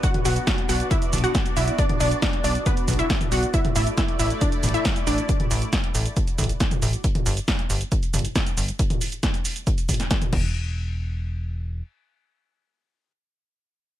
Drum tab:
CC |--------------------------------|--------------------------------|--------------------------------|--------------------------------|
HH |x-x-o-x-x-x-o-x-x-x-oxx-x-x-o-x-|x-x-o-x-x-x-o-x-x-x-oxx-x-x-o-x-|x-x-o-x-x-x-o-x-x-x-oxx-x-x-o-x-|x-x-o-x-x-x-o-x-x-x-oxx-x-x-o-x-|
SH |x---x-x-x---x-x-x-x-x-x-x-x-x-x-|x---x-x-x---x-x-x-x-x-x-x-x-x-x-|x---x-x-x---x-x-x-x-x-x-x-x-x-x-|x---x-x-x---x-x-x-x-x-x-x-x-x-x-|
SD |--------o---------------o-------|--------o---------------o-------|--------o---------------o-------|--------o---------------o-------|
T2 |--o-----------------o-----------|--o-----------------o-----o-----|--o-----------------o-----------|--o-----------------o-----o-----|
BD |o-------o-------o-------o-------|o-------o-------o---o---o-------|o-------o-------o-------o-------|o-------o-------o---o---o-------|

CC |--------------------------------|----------------------------x---|--------------------------------|--------------------------------|
HH |x-x-o-x-x-x-o-x-x-x-oxx-x-x-o-x-|x-x-o-x-x-x-o-x-x-x-oxx-x-x-----|--------------------------------|--------------------------------|
SH |x---x-x-x---x-x-x-x-x-x-x-x-x-x-|x-x-x-x-x-x-x-x-x-x-x-x-x-x-----|--------------------------------|--------------------------------|
SD |--------o---------------o-------|--------o-------------o-o-------|--------------------------------|--------------------------------|
T2 |--o-----------------o-----------|--o-----------------o-----o-----|--------------------------------|--------------------------------|
BD |o-------o-------o-------o-------|o-------o-------o---o---o---o---|--------------------------------|--------------------------------|